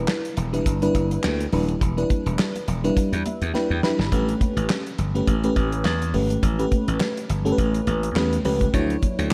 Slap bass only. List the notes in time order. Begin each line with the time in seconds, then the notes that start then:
0.37 E1
0.66 G1
0.95 G1
1.24 D2
1.53 D#1
1.81 E1
2.26 E1
2.68 E1
3.12 E2
3.42 E2
3.70 E2
3.99 G#1
4.12 A1
4.57 A1
4.98 G1
5.27 A1
5.56 A1
5.85 E2
6.14 G#1
6.43 A1
6.88 A1
7.30 G1
7.58 A1
7.87 A1
8.16 E2
8.45 C#2
8.74 D2
9.19 D2